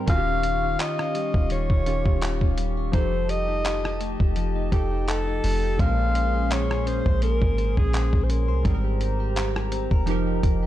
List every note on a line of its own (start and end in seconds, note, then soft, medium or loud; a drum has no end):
0.00 0.16 G#3 medium
0.00 0.16 C4 medium
0.00 3.42 A#4 medium
0.06 0.76 D#1 loud
0.06 1.82 D#3 medium
0.06 1.50 D#3 medium
0.06 1.83 C#4 medium
0.06 0.43 F4 medium
0.06 1.84 F4 medium
0.06 5.75 G4 medium
0.06 2.91 F5 medium
0.06 0.76 F5 loud
0.06 2.91 C#6 medium
0.06 kick loud
0.06 closed hi-hat medium
0.11 0.16 F#4 medium
0.17 1.87 G4 medium
0.27 0.62 C#4 medium
0.43 0.79 F4 medium
0.43 closed hi-hat medium
0.63 0.97 C#4 medium
0.79 1.34 F4 medium
0.79 1.48 D#5 loud
0.79 clap loud
0.79 closed hi-hat medium
0.99 1.69 C#4 medium
0.99 cross-stick medium
1.15 2.58 G3 medium
1.15 closed hi-hat medium
1.34 1.68 D#1 loud
1.34 1.51 F4 medium
1.34 kick loud
1.50 2.93 D#3 medium
1.50 1.86 F4 medium
1.50 2.55 C#5 medium
1.50 closed hi-hat medium
1.70 2.04 D#1 loud
1.70 2.04 C#4 medium
1.70 kick loud
1.86 2.93 D#3 soft
1.86 2.94 C#4 soft
1.86 2.22 F4 medium
1.86 2.94 F4 soft
1.86 2.94 G4 medium
1.86 closed hi-hat medium
2.06 2.40 D#1 loud
2.06 2.40 C#4 medium
2.06 kick loud
2.22 2.77 F4 medium
2.22 clap loud
2.22 closed hi-hat medium
2.41 2.91 D#1 loud
2.41 3.01 C#4 medium
2.41 kick medium
2.58 4.00 G3 medium
2.58 closed hi-hat medium
2.77 2.94 F4 medium
2.92 4.16 F1 loud
2.92 4.68 F3 medium
2.92 4.36 F3 medium
2.92 4.68 D#4 medium
2.92 3.28 G4 medium
2.92 4.69 G4 medium
2.92 3.31 C5 loud
2.92 5.77 D#5 medium
2.92 5.77 A5 medium
2.92 kick loud
2.92 closed hi-hat medium
2.97 4.70 A4 medium
3.13 3.47 D#4 medium
3.29 3.64 G4 medium
3.29 4.01 D#5 loud
3.29 closed hi-hat medium
3.49 3.83 D#4 medium
3.65 4.19 G4 medium
3.65 clap loud
3.65 closed hi-hat medium
3.84 4.55 D#4 medium
3.84 cross-stick medium
4.01 5.43 A3 medium
4.01 closed hi-hat medium
4.20 4.70 F1 medium
4.20 4.36 G4 medium
4.20 kick medium
4.36 7.87 F3 medium
4.36 4.71 G4 medium
4.36 closed hi-hat medium
4.56 4.90 D#4 medium
4.72 5.41 F1 loud
4.72 5.79 F3 medium
4.72 5.79 D#4 soft
4.72 5.07 G4 medium
4.72 5.10 G4 medium
4.72 5.80 G4 soft
4.72 5.80 A4 medium
4.72 kick medium
4.72 closed hi-hat medium
4.91 5.26 D#4 medium
5.08 5.62 G4 medium
5.08 5.82 A4 loud
5.08 clap loud
5.08 closed hi-hat medium
5.27 5.87 D#4 medium
5.44 5.78 F1 loud
5.44 5.79 A3 medium
5.44 open hi-hat medium
5.63 5.87 G4 medium
5.78 7.02 A#1 loud
5.78 8.60 A#2 medium
5.78 8.61 G#3 medium
5.78 7.22 A#3 medium
5.78 8.62 C#4 medium
5.78 8.62 G#4 medium
5.78 6.15 C5 medium
5.78 6.53 F5 loud
5.78 8.62 C6 medium
5.78 kick loud
5.78 closed hi-hat medium
5.82 8.63 A#4 medium
5.99 6.34 G#4 medium
6.15 6.90 C5 medium
6.15 closed hi-hat medium
6.34 6.70 G#4 medium
6.51 6.89 C#5 loud
6.51 clap loud
6.51 closed hi-hat medium
6.70 7.41 G#4 medium
6.70 cross-stick loud
6.87 8.28 C#4 medium
6.87 7.23 C5 loud
6.87 closed hi-hat medium
7.06 7.40 A#1 loud
7.06 7.22 C5 medium
7.06 kick medium
7.22 8.64 A#3 medium
7.22 7.74 A#4 loud
7.22 7.58 C5 medium
7.22 closed hi-hat medium
7.41 7.76 G#1 loud
7.41 7.77 G#4 medium
7.41 kick loud
7.58 7.93 C5 medium
7.58 closed hi-hat medium
7.77 8.12 A#1 loud
7.77 8.12 G#4 medium
7.77 8.25 G#4 loud
7.77 kick medium
7.93 8.48 C5 medium
7.93 clap loud
7.93 closed hi-hat medium
8.13 8.50 A#1 loud
8.13 8.73 G#4 medium
8.13 kick medium
8.24 8.32 C5 medium
8.29 8.73 C#4 medium
8.29 9.01 A#4 medium
8.29 closed hi-hat medium
8.48 8.64 C2 loud
8.48 8.65 C5 medium
8.63 9.87 G#1 loud
8.63 10.04 G#2 medium
8.63 10.05 G3 medium
8.63 10.15 G#3 medium
8.63 10.06 C4 medium
8.63 10.06 G4 medium
8.63 9.00 A#4 medium
8.63 10.06 C5 medium
8.63 10.66 A#5 medium
8.63 kick loud
8.63 closed hi-hat medium
8.68 8.74 G#4 medium
8.74 10.10 A#4 medium
8.84 9.20 G4 medium
9.01 9.36 A#4 medium
9.01 closed hi-hat medium
9.20 9.55 G4 medium
9.36 9.91 A#4 medium
9.36 clap loud
9.36 closed hi-hat medium
9.56 10.27 G4 medium
9.56 cross-stick medium
9.72 10.16 C4 medium
9.72 closed hi-hat medium
9.91 10.41 F1 loud
9.91 10.08 A#4 medium
9.91 kick loud
10.06 10.66 F3 medium
10.06 10.66 D#4 medium
10.06 10.66 G4 medium
10.06 10.43 A#4 medium
10.06 10.66 D#5 medium
10.06 closed hi-hat medium
10.11 10.66 A#4 medium
10.27 10.62 G4 medium
10.43 10.66 F1 loud
10.43 10.66 A#4 medium
10.43 kick medium
10.43 closed hi-hat medium
10.63 10.66 G4 medium